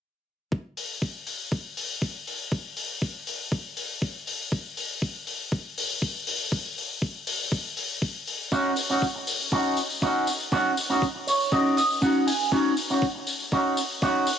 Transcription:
0.52 kick
0.77 open hi-hat
1.02 kick
1.27 open hi-hat
1.52 kick
1.77 open hi-hat
2.02 kick
2.27 open hi-hat
2.52 kick
2.77 open hi-hat
3.02 kick
3.27 open hi-hat
3.52 kick
3.77 open hi-hat
4.02 kick
4.27 open hi-hat
4.52 kick
4.77 open hi-hat
5.02 kick
5.27 open hi-hat
5.52 kick
5.78 open hi-hat
6.02 kick
6.27 open hi-hat
6.52 kick
6.78 open hi-hat
7.02 kick
7.27 open hi-hat
7.52 kick
7.77 open hi-hat
8.02 kick
8.27 open hi-hat
8.52 C#4 D#4 F#4, kick, tambourine
8.76 open hi-hat, tambourine
8.90 C#4 D#4 F#4, tambourine
9.02 kick, tambourine
9.15 muted clean electric guitar stroke
9.27 open hi-hat, tambourine
9.41 tambourine
9.52 C#4 D#4 F#4, kick, tambourine
9.77 open hi-hat, tambourine
9.90 tambourine
10.02 C#4 D#4 F#4, kick, tambourine
10.27 open hi-hat, tambourine
10.40 tambourine
10.52 C#4 D#4 F#4, kick, tambourine
10.77 open hi-hat, tambourine
10.89 C#4 D#4 F#4, tambourine
11.02 kick, tambourine
11.15 muted clean electric guitar stroke
11.27 C#5, open hi-hat, tambourine
11.40 tambourine
11.52 C#4 D#4 F#4 D#5, kick, tambourine
11.77 D#5, open hi-hat, tambourine
11.90 tambourine
12.01 C#4 D#4 F#4 F#5, kick, tambourine
12.27 G#5, open hi-hat, tambourine
12.40 tambourine
12.52 C#4 D#4 F#4, kick, tambourine
12.77 open hi-hat, tambourine
12.90 C#4 D#4 F#4, tambourine
13.02 kick, tambourine
13.15 muted clean electric guitar stroke
13.27 open hi-hat, tambourine
13.40 tambourine
13.51 C#4 D#4 F#4, kick, tambourine
13.77 open hi-hat, tambourine
13.90 tambourine
14.02 C#4 D#4 F#4, kick, tambourine
14.27 open hi-hat, tambourine

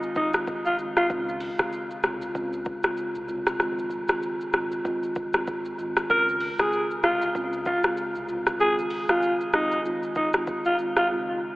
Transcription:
Already playing: D#3 G#3 C4 F4
0.03 shaker
0.15 D#1 D#4, kick, shaker
0.33 D#3 G#3 C4 F4, cross-stick, shaker
0.47 kick, shaker
0.65 F1 F4, shaker
0.79 D#3 G#3 C4 F4, shaker
0.97 G#1 F4, cross-stick, shaker
1.10 C#2 C#3 G#3 C4 F4, kick, shaker
1.29 shaker
1.40 open hi-hat, shaker
1.58 C#3 G#3 C4 F4, kick, cross-stick, shaker
1.73 shaker
1.91 shaker
2.03 C2 C#3 G#3 C4 F4, cross-stick, shaker
2.22 shaker
2.35 C#2 C#3 G#3 C4 F4, kick, shaker
2.53 shaker
2.65 kick, shaker
2.83 C#3 G#3 C4 F4, cross-stick, shaker
2.97 shaker
3.15 C2, shaker
3.28 C#3 G#3 C4 F4, shaker
3.47 C2, cross-stick, shaker
3.60 F1 D#3 G#3 C4 F4, cross-stick, shaker
3.79 shaker
3.90 shaker
4.08 D#3 G#3 C4 F4, cross-stick, shaker
4.23 shaker
4.41 shaker
4.53 G#1 D#3 G#3 C4 F4, cross-stick, shaker
4.72 shaker
4.85 D#1 D#3 G#3 C4 F4, kick, shaker
5.03 shaker
5.15 F1, kick, shaker
5.33 F1 D#3 G#3 C4 F4, cross-stick, shaker
5.47 G#1, kick, shaker
5.65 shaker
5.78 G#1 D#3 G#3 C4 F4, shaker
5.97 cross-stick, shaker
6.09 C#2 C#3 G#3 C4 F4 A#4, kick, shaker
6.29 shaker
6.40 open hi-hat, shaker
6.59 C#3 G#3 C4 F4 G#4, kick, cross-stick, shaker
6.73 shaker
6.91 shaker
7.03 C2 C#3 G#3 C4 F4, cross-stick, shaker
7.22 shaker
7.35 C#2 C#3 G#3 C4 F4, kick, shaker
7.53 shaker
7.65 F4, kick, shaker
7.83 C#3 G#3 C4 F4, cross-stick, shaker
7.97 shaker
8.15 C2, shaker
8.28 C#3 G#3 C4 F4, shaker
8.47 C2, cross-stick, shaker
8.59 D#3 G#3 C4 F4 G#4, shaker
8.79 shaker
8.90 open hi-hat, shaker
9.08 D#3 G#3 C4 F4, cross-stick, shaker
9.22 shaker
9.41 shaker
9.53 D#3 G#3 C4 D#4 F4, cross-stick, shaker
9.72 shaker
9.84 D#3 G#3 C4 F4, shaker
10.03 shaker
10.15 D#4, kick, shaker
10.33 D#3 G#3 C4 F4, cross-stick, shaker
10.47 kick, shaker
10.65 F4, shaker
10.78 D#3 G#3 C4 F4, shaker
10.97 F4, cross-stick, shaker
11.10 C#3 G#3 C4 F4

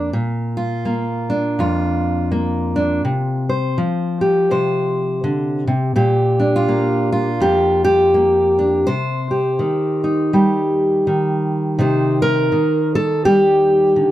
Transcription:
Already playing: F2 D5
0.13 A#2
0.57 F4
0.85 A#3
1.30 D4
1.59 F2 F4
2.32 A#3
2.76 D4
3.05 C3
3.49 C5
3.78 F3
4.21 G4
4.51 C3 C5
5.24 D3
5.67 C3
5.96 A#2 G4
6.40 D4
6.56 F4
6.69 A#3
7.12 F4
7.40 F2 G4
7.84 G4
8.14 A#3
8.59 D4
8.87 C3 C5
9.31 G4
9.59 D#3
10.04 D#4
10.33 G3 G4
11.07 D#3
11.79 C3 D#4 G4 C5
12.22 A#4
12.52 D#3
12.95 A4
13.25 G3 G4
13.96 D3

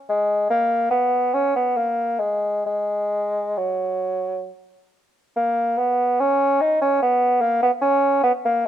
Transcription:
0.09 G#3
0.50 A#3
0.91 B3
1.34 C#4
1.56 B3
1.77 A#3
2.20 G#3
2.66 G#3
3.58 F#3
5.36 A#3
5.78 B3
6.20 C#4
6.61 D#4
6.81 C#4
7.02 B3
7.41 A#3
7.63 B3
7.82 C#4
8.23 B3
8.45 A#3

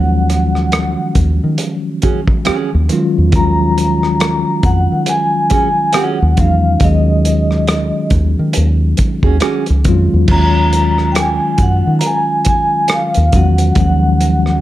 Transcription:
Already playing: D#2 D#3 F3 F#3 G#3 C#4 F#4 F#5
0.30 cross-stick, closed hi-hat
0.55 cross-stick
0.72 cross-stick, closed hi-hat
1.15 D#2, kick, closed hi-hat
1.44 D#3
1.58 closed hi-hat
2.02 C#4 F#4 G#4, kick, closed hi-hat
2.27 kick
2.45 C#4 F#4 G#4, muted fingered electric bass stroke, cross-stick, closed hi-hat
2.74 D#2
2.89 D#3 F#3 G#3 C#4 F4, closed hi-hat
3.18 E2
3.32 D#2 D#3 F3 G#3 C#4 A#5, kick, closed hi-hat
3.37 F#3 F4
3.78 closed hi-hat
4.03 cross-stick
4.20 cross-stick, closed hi-hat
4.63 F2 F#5, kick, closed hi-hat
4.92 D#3
5.06 G#5, closed hi-hat
5.50 C#4 F#4 G#4 G#5, kick, closed hi-hat
5.93 C#4 F#4 G#4 F#5, cross-stick, closed hi-hat
6.22 D#2
6.37 E2 D#3 F#3 G#3 C#4 D#4 F5, kick, closed hi-hat
6.80 D#2 D#3 F#3 G#3 C#4 D#5, kick, closed hi-hat
6.84 G#4
7.25 closed hi-hat
7.51 cross-stick
7.67 cross-stick, closed hi-hat
8.10 D#2, kick, closed hi-hat
8.39 D#3
8.53 D#2, closed hi-hat
8.97 muted fingered electric bass stroke, kick, closed hi-hat
9.23 D#2 C#4 F#4 G#4, kick
9.40 C#4 F#4 G#4, cross-stick, closed hi-hat
9.66 C#2, closed hi-hat
9.84 F2 D#3 F#3 G#3 C#4 F4, kick, closed hi-hat
10.13 E2
10.28 D#2 D#3 F3 G#3 C#4 A#5, kick, crash
10.32 F#3 F4
10.73 closed hi-hat
10.98 cross-stick
11.12 G5, closed hi-hat
11.16 G#5, cross-stick
11.58 F#2, kick, closed hi-hat
11.63 F#5
11.87 D#3
11.99 A#5, closed hi-hat
12.06 G#5
12.45 kick, closed hi-hat
12.50 G#5
12.88 cross-stick, closed hi-hat
12.94 F5
13.14 D#2, closed hi-hat
13.32 E2 D#3 F#3 G#3 C#4 F#4, kick, closed hi-hat
13.36 F#5
13.58 closed hi-hat
13.75 D#2 D#3 F#3 G#3 C#4, kick, closed hi-hat
13.79 F3 F#5
14.21 closed hi-hat
14.46 cross-stick

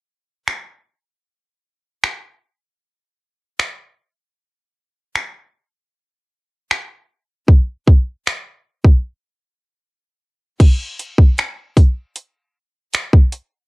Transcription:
0.48 finger snap
2.04 finger snap
3.59 finger snap
5.15 finger snap
6.71 finger snap
7.48 kick
7.88 kick
8.27 finger snap
8.85 kick
10.60 kick, closed hi-hat, crash
10.99 closed hi-hat
11.18 kick
11.38 finger snap, closed hi-hat
11.77 kick, closed hi-hat
12.16 closed hi-hat
12.93 finger snap, closed hi-hat
13.13 kick
13.32 closed hi-hat

